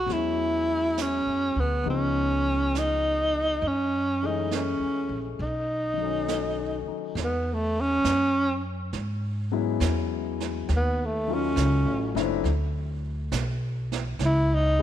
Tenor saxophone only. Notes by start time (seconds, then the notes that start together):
Already playing: F#4
0.13 E4
1.02 C#4
1.60 B3
1.90 C#4
2.78 D#4
3.67 C#4
4.26 D#4
4.55 C#4
5.42 D#4
7.24 B3
7.54 A3
7.81 C#4
10.76 B3
11.05 A3
11.34 C#4
14.25 E4
14.54 D#4